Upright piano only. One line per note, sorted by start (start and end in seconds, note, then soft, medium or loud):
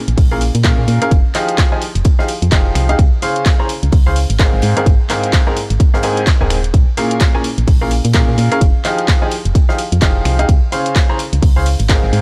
0.31 0.40 A#2 medium
0.31 0.40 C#4 medium
0.31 0.40 G#4 medium
0.31 0.40 A#4 medium
0.31 0.40 F5 medium
0.64 0.98 A#2 medium
0.64 0.98 C#4 medium
0.64 0.98 G#4 medium
0.64 0.98 A#4 medium
0.64 0.98 F5 medium
1.02 1.10 C#4 medium
1.02 1.10 G#4 medium
1.02 1.10 A#4 medium
1.02 1.10 F5 medium
1.35 1.69 F3 medium
1.35 1.69 D#4 medium
1.35 1.69 G4 medium
1.35 1.69 G#4 medium
1.35 1.69 F5 medium
1.72 1.80 F3 medium
1.72 1.80 D#4 medium
1.72 1.80 G4 medium
1.72 1.80 G#4 medium
1.72 1.80 G#5 medium
2.19 2.27 F3 medium
2.19 2.27 D#4 medium
2.19 2.27 G4 medium
2.19 2.27 G#4 medium
2.19 2.27 F5 medium
2.52 2.86 F3 medium
2.52 2.86 D#4 medium
2.52 2.86 G4 medium
2.52 2.86 G#4 medium
2.52 2.86 F5 medium
2.89 2.98 D#4 medium
2.89 2.98 G4 medium
2.89 2.98 G#4 medium
2.89 2.98 F5 medium
3.22 3.56 C#3 medium
3.22 3.56 C#4 medium
3.22 3.56 G#4 medium
3.22 3.56 C5 medium
3.22 3.56 F5 medium
3.59 3.68 C#3 medium
3.59 3.68 C#4 medium
3.59 3.68 G#4 medium
3.59 3.68 C5 medium
3.59 3.68 A#5 medium
4.06 4.15 C#3 medium
4.06 4.15 C#4 medium
4.06 4.15 G#4 medium
4.06 4.15 C5 medium
4.06 4.15 F5 medium
4.39 4.73 G#2 medium
4.39 4.73 C4 medium
4.39 4.73 G#4 medium
4.39 4.73 A#4 medium
4.39 4.73 F5 medium
4.77 4.85 G#2 medium
4.77 4.85 C4 medium
4.77 4.85 G#4 medium
4.77 4.85 A#4 medium
4.77 4.85 F5 medium
5.10 5.44 G#2 medium
5.10 5.44 C4 medium
5.10 5.44 G#4 medium
5.10 5.44 A#4 medium
5.10 5.44 F5 medium
5.47 5.55 G#2 medium
5.47 5.55 C4 medium
5.47 5.55 G#4 medium
5.47 5.55 A#4 medium
5.47 5.55 A#5 medium
5.94 6.02 G#2 medium
5.94 6.02 C4 medium
5.94 6.02 G#4 medium
5.94 6.02 A#4 medium
5.94 6.02 F5 medium
6.03 6.21 G#2 medium
6.03 6.21 C4 medium
6.03 6.21 G#4 medium
6.03 6.21 A#4 medium
6.03 6.21 G#5 medium
6.41 6.56 G#2 medium
6.41 6.56 C4 medium
6.41 6.56 G#4 medium
6.41 6.56 A#4 medium
6.41 6.56 G#5 medium
6.97 7.31 A#2 medium
6.97 7.31 C#4 medium
6.97 7.31 G#4 medium
6.97 7.31 A#4 medium
6.97 7.31 F5 medium
7.34 7.43 A#2 medium
7.34 7.43 C#4 medium
7.34 7.43 G#4 medium
7.34 7.43 A#4 medium
7.34 7.43 G#5 medium
7.81 7.90 A#2 medium
7.81 7.90 C#4 medium
7.81 7.90 G#4 medium
7.81 7.90 A#4 medium
7.81 7.90 F5 medium
8.14 8.48 A#2 medium
8.14 8.48 C#4 medium
8.14 8.48 G#4 medium
8.14 8.48 A#4 medium
8.14 8.48 F5 medium
8.52 8.60 C#4 medium
8.52 8.60 G#4 medium
8.52 8.60 A#4 medium
8.52 8.60 F5 medium
8.85 9.19 F3 medium
8.85 9.19 D#4 medium
8.85 9.19 G4 medium
8.85 9.19 G#4 medium
8.85 9.19 F5 medium
9.22 9.30 F3 medium
9.22 9.30 D#4 medium
9.22 9.30 G4 medium
9.22 9.30 G#4 medium
9.22 9.30 G#5 medium
9.69 9.77 F3 medium
9.69 9.77 D#4 medium
9.69 9.77 G4 medium
9.69 9.77 G#4 medium
9.69 9.77 F5 medium
10.02 10.36 F3 medium
10.02 10.36 D#4 medium
10.02 10.36 G4 medium
10.02 10.36 G#4 medium
10.02 10.36 F5 medium
10.39 10.48 D#4 medium
10.39 10.48 G4 medium
10.39 10.48 G#4 medium
10.39 10.48 F5 medium
10.72 11.06 C#3 medium
10.72 11.06 C#4 medium
10.72 11.06 G#4 medium
10.72 11.06 C5 medium
10.72 11.06 F5 medium
11.09 11.18 C#3 medium
11.09 11.18 C#4 medium
11.09 11.18 G#4 medium
11.09 11.18 C5 medium
11.09 11.18 A#5 medium
11.56 11.65 C#3 medium
11.56 11.65 C#4 medium
11.56 11.65 G#4 medium
11.56 11.65 C5 medium
11.56 11.65 F5 medium
11.89 12.21 G#2 medium
11.89 12.21 C4 medium
11.89 12.21 G#4 medium
11.89 12.21 A#4 medium
11.89 12.21 F5 medium